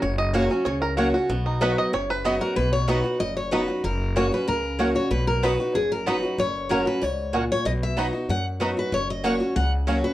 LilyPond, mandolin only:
\new Staff \with { instrumentName = "Mandolin" } { \time 4/4 \key b \major \tempo 4 = 189 r4 <ais fis' cis'' fis''>8 r4. <ais fis' cis'' fis''>8 r8 | r4 <b fis' dis'' b''>8 r4. <b fis' dis'' b''>8 r8 | r4 <b fis' dis'' b''>8 r4. <b fis' dis'' b''>8 r8 | r4 <ais fis' cis'' fis''>8 r4. <ais fis' cis'' fis''>8 r8 |
r4 <b fis' dis'' b''>8 r4. <b fis' dis'' b''>8 r8 | r4 <ais fis' cis'' fis''>8 r4. <ais fis' cis'' fis''>8 r8 | r4 <b fis' dis'' b''>8 r4. <b fis' dis'' b''>8 r8 | r4 <ais fis' cis'' fis''>8 r4. <ais fis' cis'' fis''>8 r8 | }